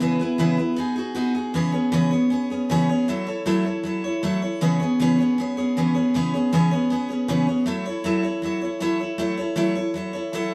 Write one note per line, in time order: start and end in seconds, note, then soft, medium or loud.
0.00 0.20 C#3 medium
0.00 0.20 E3 medium
0.00 0.21 B3 medium
0.00 0.21 E4 medium
0.00 0.18 G#4 medium
0.00 0.20 B4 medium
0.19 0.38 B3 medium
0.19 0.38 E4 medium
0.19 0.39 G#4 medium
0.19 0.39 B4 medium
0.38 0.58 C#3 medium
0.38 0.58 E3 medium
0.38 0.59 B3 loud
0.38 0.58 E4 medium
0.38 0.56 G#4 medium
0.38 0.57 B4 loud
0.57 0.75 B3 soft
0.57 0.77 E4 medium
0.57 0.77 G#4 medium
0.57 0.78 B4 medium
0.76 0.96 B3 medium
0.76 0.96 D#4 medium
0.76 0.97 F#4 medium
0.76 0.94 G#4 medium
0.96 1.15 D#4 medium
0.96 1.14 F#4 soft
0.96 1.16 G#4 medium
1.15 1.35 B3 medium
1.15 1.35 D#4 medium
1.15 1.35 F#4 medium
1.15 1.33 G#4 medium
1.35 1.55 D#4 soft
1.35 1.55 F#4 soft
1.35 1.54 G#4 soft
1.54 1.74 C#3 medium
1.54 1.73 E3 medium
1.54 1.73 B3 medium
1.54 1.74 C#4 medium
1.54 1.72 G#4 medium
1.54 1.71 C#5 loud
1.72 1.92 B3 medium
1.72 1.91 C#4 medium
1.72 1.92 G#4 medium
1.72 1.92 C#5 medium
1.92 2.12 C#3 loud
1.92 2.12 E3 loud
1.92 2.12 B3 loud
1.92 2.12 C#4 medium
1.92 2.11 G#4 loud
1.92 2.09 C#5 loud
2.11 2.30 B3 medium
2.11 2.29 C#4 soft
2.11 2.31 G#4 medium
2.11 2.31 C#5 medium
2.30 2.51 B3 medium
2.30 2.50 C#4 medium
2.30 2.50 G#4 medium
2.30 2.49 C#5 medium
2.50 2.70 B3 soft
2.50 2.70 C#4 soft
2.50 2.70 G#4 medium
2.50 2.70 C#5 medium
2.70 2.89 C#3 medium
2.70 2.89 E3 medium
2.70 2.90 B3 medium
2.70 2.89 C#4 loud
2.70 2.89 G#4 loud
2.70 2.88 C#5 loud
2.89 3.09 B3 medium
2.89 3.08 C#4 soft
2.89 3.09 G#4 medium
2.89 3.08 C#5 medium
3.08 3.28 F#3 medium
3.08 3.27 A3 medium
3.08 3.28 E4 medium
3.08 3.27 A4 medium
3.08 3.25 C#5 medium
3.26 3.46 E4 soft
3.26 3.46 A4 medium
3.26 3.46 C#5 medium
3.46 3.66 F#3 loud
3.46 3.65 A3 medium
3.46 3.66 E4 loud
3.46 3.65 A4 loud
3.46 3.63 C#5 medium
3.65 3.84 E4 soft
3.65 3.85 A4 medium
3.65 3.84 C#5 medium
3.83 4.03 F#3 medium
3.83 4.04 E4 medium
3.83 4.05 A4 medium
3.83 4.03 C#5 medium
4.04 4.23 E4 soft
4.04 4.24 A4 medium
4.04 4.23 C#5 medium
4.23 4.42 F#3 medium
4.23 4.42 A3 medium
4.23 4.43 E4 medium
4.23 4.42 A4 medium
4.23 4.41 C#5 loud
4.42 4.62 E4 soft
4.42 4.62 A4 medium
4.42 4.61 C#5 medium
4.61 4.80 C#3 medium
4.61 4.80 E3 medium
4.61 4.81 B3 loud
4.61 4.81 C#4 medium
4.61 4.80 G#4 medium
4.61 4.78 C#5 medium
4.80 5.00 B3 medium
4.80 5.00 C#4 medium
4.80 5.00 G#4 medium
4.80 4.99 C#5 medium
5.00 5.19 C#3 loud
5.00 5.19 E3 medium
5.00 5.20 B3 loud
5.00 5.20 C#4 medium
5.00 5.19 G#4 medium
5.00 5.17 C#5 loud
5.19 5.38 B3 medium
5.19 5.37 C#4 medium
5.19 5.39 G#4 medium
5.19 5.38 C#5 medium
5.38 5.58 B3 medium
5.38 5.57 C#4 medium
5.38 5.57 G#4 medium
5.38 5.56 C#5 medium
5.57 5.77 B3 soft
5.57 5.77 C#4 soft
5.57 5.77 G#4 medium
5.57 5.76 C#5 medium
5.77 5.96 C#3 medium
5.77 5.96 E3 medium
5.77 5.95 B3 loud
5.77 5.96 C#4 medium
5.77 5.94 G#4 medium
5.77 5.93 C#5 medium
5.94 6.15 B3 soft
5.94 6.14 C#4 soft
5.94 6.14 G#4 medium
5.94 6.14 C#5 medium
6.14 6.34 C#3 medium
6.14 6.33 E3 medium
6.14 6.34 B3 loud
6.14 6.34 C#4 medium
6.14 6.34 G#4 medium
6.14 6.32 C#5 loud
6.34 6.53 B3 medium
6.34 6.53 C#4 medium
6.34 6.53 G#4 medium
6.34 6.53 C#5 medium
6.53 6.72 C#3 medium
6.53 6.72 E3 medium
6.53 6.72 B3 loud
6.53 6.72 C#4 medium
6.53 6.71 G#4 loud
6.53 6.70 C#5 medium
6.71 6.90 B3 soft
6.71 6.89 C#4 soft
6.71 6.91 G#4 medium
6.71 6.90 C#5 medium
6.90 7.10 B3 medium
6.90 7.10 C#4 medium
6.90 7.09 G#4 medium
6.90 7.07 C#5 medium
7.09 7.28 B3 medium
7.09 7.28 C#4 soft
7.09 7.29 G#4 medium
7.09 7.28 C#5 medium
7.28 7.48 C#3 medium
7.28 7.48 E3 medium
7.28 7.48 B3 loud
7.28 7.48 C#4 loud
7.28 7.47 G#4 loud
7.28 7.46 C#5 medium
7.47 7.67 B3 soft
7.47 7.66 C#4 soft
7.47 7.67 G#4 soft
7.47 7.67 C#5 soft
7.66 7.86 F#3 medium
7.66 7.85 A3 medium
7.66 7.86 E4 medium
7.66 7.86 A4 loud
7.66 7.84 C#5 medium
7.85 8.04 E4 medium
7.85 8.05 A4 medium
7.85 8.05 C#5 medium
8.04 8.24 F#3 medium
8.04 8.24 A3 medium
8.04 8.25 E4 medium
8.04 8.23 A4 medium
8.04 8.22 C#5 medium
8.23 8.42 E4 soft
8.23 8.43 A4 medium
8.23 8.43 C#5 medium
8.42 8.62 F#3 medium
8.42 8.62 E4 medium
8.42 8.62 A4 medium
8.42 8.60 C#5 medium
8.61 8.81 E4 soft
8.61 8.81 A4 soft
8.61 8.81 C#5 medium
8.80 9.00 F#3 medium
8.80 9.00 A3 medium
8.80 9.01 E4 loud
8.80 9.00 A4 loud
8.80 8.98 C#5 loud
8.99 9.18 E4 soft
8.99 9.18 A4 medium
8.99 9.19 C#5 medium
9.18 9.38 F#3 medium
9.18 9.38 A3 medium
9.18 9.39 E4 medium
9.18 9.38 A4 medium
9.18 9.36 C#5 medium
9.37 9.56 E4 medium
9.37 9.56 A4 medium
9.37 9.57 C#5 medium
9.56 9.76 F#3 medium
9.56 9.76 A3 medium
9.56 9.76 E4 loud
9.56 9.76 A4 loud
9.56 9.74 C#5 loud
9.75 9.94 E4 soft
9.75 9.95 A4 medium
9.75 9.95 C#5 medium
9.94 10.14 F#3 medium
9.94 10.15 E4 medium
9.94 10.14 A4 medium
9.94 10.12 C#5 medium
10.13 10.33 E4 medium
10.13 10.34 A4 medium
10.13 10.33 C#5 medium
10.33 10.53 F#3 medium
10.33 10.52 A3 medium
10.33 10.53 E4 loud
10.33 10.53 A4 medium
10.33 10.51 C#5 loud